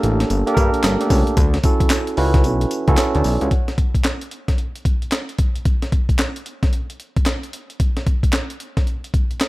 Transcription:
Already playing: tine electric piano A#3 D4 G4 A4 A#4
0.03 analog synth bass A1, closed hi-hat
0.20 snare, closed hi-hat
0.30 analog synth bass G1, closed hi-hat, tambourine
0.47 tine electric piano A#3 D4 G4 A4, closed hi-hat
0.54 analog synth bass G2, tine electric piano A#4, kick, closed hi-hat, tambourine
0.74 closed hi-hat
0.84 analog synth bass G1, snare, clap, closed hi-hat, tambourine
1.00 tine electric piano A3 D4 G4 A4, closed hi-hat
1.07 analog synth bass C#2, tine electric piano A#3, kick, open hi-hat, tambourine
1.27 closed hi-hat
1.37 analog synth bass D2, kick, closed hi-hat, tambourine
1.54 snare, closed hi-hat
1.63 tine electric piano C#4 E4 F#4 A4, kick, closed hi-hat, tambourine
1.80 analog synth bass C#2, kick, closed hi-hat
1.90 snare, clap, closed hi-hat, tambourine
2.07 closed hi-hat
2.17 analog synth bass C#2, tine electric piano C#4 E4 F#4 B4, open hi-hat
2.34 kick, snare, closed hi-hat
2.44 analog synth bass B1, closed hi-hat, tambourine
2.61 closed hi-hat
2.71 closed hi-hat, tambourine
2.88 analog synth bass C#2, tine electric piano C#4 E4 F#4 A4, kick, closed hi-hat
2.97 tine electric piano F#4 C#5, snare, clap, closed hi-hat, tambourine
3.15 analog synth bass D2, tine electric piano A4 D5, closed hi-hat
3.24 analog synth bass B1, open hi-hat, tambourine
3.41 analog synth bass C#2, tine electric piano C#5 F#5, closed hi-hat
3.51 kick, closed hi-hat
3.68 snare, closed hi-hat
3.78 kick, closed hi-hat
3.95 kick, closed hi-hat
4.05 snare, clap, closed hi-hat
4.21 closed hi-hat
4.31 closed hi-hat
4.48 kick, snare, closed hi-hat
4.58 closed hi-hat
4.76 closed hi-hat
4.85 kick, closed hi-hat
5.02 closed hi-hat
5.12 snare, clap, closed hi-hat
5.29 closed hi-hat
5.38 kick, closed hi-hat
5.56 closed hi-hat
5.65 kick, closed hi-hat
5.82 snare, closed hi-hat
5.92 kick, closed hi-hat
6.09 kick, closed hi-hat
6.19 snare, clap, closed hi-hat
6.36 closed hi-hat
6.46 closed hi-hat
6.63 kick, snare, closed hi-hat
6.73 closed hi-hat
6.90 closed hi-hat
7.00 closed hi-hat
7.16 kick, closed hi-hat
7.26 snare, clap, closed hi-hat
7.43 closed hi-hat
7.53 closed hi-hat
7.70 closed hi-hat
7.80 kick, closed hi-hat
7.97 snare, closed hi-hat
8.07 kick, closed hi-hat
8.23 kick, closed hi-hat
8.33 snare, clap, closed hi-hat
8.50 closed hi-hat
8.60 closed hi-hat
8.77 kick, snare, closed hi-hat
8.87 closed hi-hat
9.04 closed hi-hat
9.14 kick, closed hi-hat
9.31 closed hi-hat
9.41 snare, clap, closed hi-hat

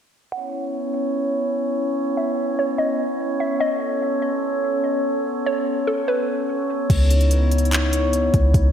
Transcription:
0.32 glass harmonica B3 C#4 E4 C#5, synth pluck F#5
2.17 synth pluck E5
2.59 synth pluck C#5
2.78 synth pluck D#5
3.40 synth pluck E5
3.60 glass harmonica A4, synth pluck D#5
5.46 synth pluck C#5
5.87 synth pluck A4
6.08 synth pluck B4
6.90 808-style bass C#2, glass harmonica B3 D#4 E4 C#5, kick, closed hi-hat, crash
7.10 closed hi-hat
7.21 closed hi-hat
7.31 closed hi-hat
7.52 closed hi-hat
7.58 closed hi-hat
7.65 closed hi-hat
7.72 clap, closed hi-hat
7.93 closed hi-hat
8.13 closed hi-hat
8.34 808-style bass C#2, kick, closed hi-hat
8.54 808-style bass C#2, kick, closed hi-hat

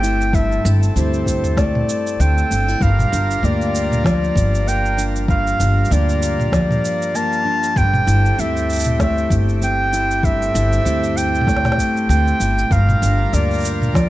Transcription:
Already playing: upright bass G1, steel-string acoustic guitar G2 A3 C4 G4, accordion A3 C4 G4, clarinet G5
0.03 steel-string acoustic guitar E4, shaker
0.21 shaker
0.33 steel-string acoustic guitar G2, accordion A4, clarinet E5, kick, shaker
0.52 shaker
0.65 upright bass G1, steel-string acoustic guitar E4, shaker
0.83 shaker
0.96 upright bass D2, steel-string acoustic guitar C4 E4 G4, clarinet C5, shaker
1.14 shaker
1.26 kick, shaker
1.44 mid tom, shaker
1.57 steel-string acoustic guitar A3, clarinet D5, kick, snare, shaker
1.75 mid tom
1.89 shaker
2.07 shaker
2.20 upright bass D2, steel-string acoustic guitar C4, clarinet G5, shaker
2.38 shaker
2.50 upright bass G1, steel-string acoustic guitar D4, shaker
2.68 steel-string acoustic guitar E4, shaker
2.81 upright bass G1, steel-string acoustic guitar G2, accordion G3 F4 A#4, clarinet F5, kick, shaker
2.99 mid tom, shaker
3.12 upright bass G1, steel-string acoustic guitar D4, shaker
3.31 shaker
3.43 upright bass D2, steel-string acoustic guitar A#3 D4 G4, clarinet D5, shaker
3.62 shaker
3.75 shaker
3.92 mid tom, shaker
4.04 steel-string acoustic guitar F3, clarinet D5, kick, snare, shaker
4.24 shaker
4.35 upright bass G1, kick, shaker
4.55 shaker
4.66 steel-string acoustic guitar A#3, clarinet G5, shaker
4.86 shaker
4.97 steel-string acoustic guitar D4, shaker
5.16 shaker
5.28 steel-string acoustic guitar G2, accordion F4, clarinet F5, kick, shaker
5.47 shaker
5.60 upright bass G1, steel-string acoustic guitar D4, shaker
5.85 shaker
5.90 upright bass D2, steel-string acoustic guitar A#3 D4 G4, clarinet D5, shaker
6.09 shaker
6.23 shaker
6.40 mid tom, shaker
6.52 steel-string acoustic guitar F3, clarinet D5, kick, snare, shaker
6.71 mid tom, shaker
6.85 shaker
7.02 shaker
7.15 steel-string acoustic guitar A#3, clarinet A5, shaker
7.33 shaker
7.45 steel-string acoustic guitar D4
7.63 shaker
7.76 upright bass G1, steel-string acoustic guitar G2, accordion A3 C4 G4, clarinet G5, kick, shaker
7.94 mid tom, shaker
8.06 upright bass G1, steel-string acoustic guitar E4, shaker
8.25 shaker
8.38 upright bass D2, steel-string acoustic guitar C4 E4 G4, clarinet E5, shaker
8.57 shaker
8.70 shaker
8.73 shaker
8.76 shaker
8.79 shaker
8.84 mid tom, shaker
8.99 steel-string acoustic guitar A3, clarinet E5, kick, snare, shaker
9.18 shaker
9.30 upright bass G1, kick, shaker
9.49 shaker
9.61 steel-string acoustic guitar C4, clarinet G5, shaker
9.93 steel-string acoustic guitar E4, shaker
10.11 shaker
10.23 steel-string acoustic guitar G2, clarinet E5, kick, shaker
10.42 shaker
10.54 upright bass G1, steel-string acoustic guitar E4, shaker
10.73 shaker
10.85 upright bass D2, steel-string acoustic guitar C4 E4 G4, shaker
11.04 shaker
11.17 clarinet G5, shaker
11.35 shaker
11.41 mid tom
11.47 steel-string acoustic guitar A3, kick, snare, shaker
11.56 snare
11.65 snare, mid tom, shaker
11.72 snare
11.78 kick, shaker
11.97 shaker
12.09 upright bass D2, steel-string acoustic guitar C4, clarinet G5, shaker
12.28 shaker
12.40 upright bass G1, steel-string acoustic guitar E4, shaker
12.58 shaker
12.71 upright bass G1, steel-string acoustic guitar G2, accordion G3 F4 A#4, clarinet F5, kick, shaker
12.89 mid tom, shaker
13.01 upright bass G1, steel-string acoustic guitar D4, shaker
13.32 upright bass D2, steel-string acoustic guitar A#3 D4 G4, clarinet D5, shaker
13.51 shaker
13.54 shaker
13.58 shaker
13.60 shaker
13.63 shaker
13.65 shaker
13.82 mid tom, shaker
13.94 steel-string acoustic guitar F3, clarinet D5, kick, snare, shaker

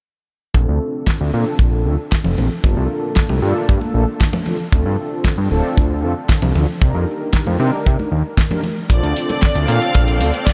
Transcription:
0.54 analog synth bass A#1, analog polysynth C4 D4 F4 A4, kick
0.69 analog synth bass D2
1.07 kick, snare
1.21 analog synth bass D2
1.33 analog synth bass A#2, analog polysynth C4 D4 F4 A4
1.59 analog synth bass A#1, kick
1.85 analog synth bass D2, analog polysynth C4 D4 F4 A4
2.12 kick, snare
2.24 analog synth bass F1, low conga
2.37 analog synth bass A#1, analog polysynth C4 D4 F4 A4, low conga
2.63 analog synth bass G1, analog polysynth A#3 D4 F4 A4, kick
2.77 analog synth bass C2
3.16 kick, snare
3.29 analog synth bass C2, high conga
3.42 analog synth bass G2, analog polysynth A#3 D4 F4 A4
3.69 analog synth bass G2, kick
3.81 high conga
3.94 analog synth bass A#1, analog polysynth A#3 D4 F4 A4
4.21 kick, snare
4.33 high conga, low conga
4.46 analog polysynth C4 D4 F4 A4, high conga, low conga
4.72 analog synth bass D2, analog polysynth C4 D4 F4 A4, kick
4.86 analog synth bass G2
5.25 kick, snare
5.38 analog synth bass G2
5.50 analog synth bass D1, analog polysynth C4 D4 F4 A4
5.77 analog synth bass D2, kick
6.02 analog synth bass F2, analog polysynth C4 D4 F4 A4
6.29 kick, snare
6.42 analog synth bass C2, low conga
6.55 analog synth bass D2, analog polysynth C4 D4 F4 A4, low conga
6.80 analog synth bass C2, analog polysynth D4 D#4 G4 A#4, kick
6.95 analog synth bass F2
7.33 kick, snare
7.47 analog synth bass F2, high conga
7.59 analog synth bass C3, analog polysynth D4 D#4 G4 A#4
7.86 analog synth bass C3, kick
7.99 high conga
8.12 analog synth bass D#2
8.37 kick, snare
8.51 analog polysynth D4 D#4 G4 A#4, high conga, low conga
8.63 high conga, low conga
8.90 analog synth bass A#1, analog polysynth C4 D4 F4 A4, string section C4 D5, violin section D5, kick, closed hi-hat, muted conga
9.03 analog synth bass D2, closed hi-hat
9.16 open hi-hat
9.29 violin section D5, closed hi-hat, muted conga
9.42 kick, snare, closed hi-hat
9.55 analog synth bass D2, closed hi-hat, muted conga
9.68 analog synth bass A#2, analog polysynth C4 D4 F4 A4, violin section F5, open hi-hat
9.82 closed hi-hat
9.94 analog synth bass A#1, kick, closed hi-hat, muted conga
10.08 closed hi-hat
10.20 analog synth bass D2, analog polysynth C4 D4 F4 A4, open hi-hat, muted conga
10.34 closed hi-hat
10.46 violin section D5, kick, snare, closed hi-hat

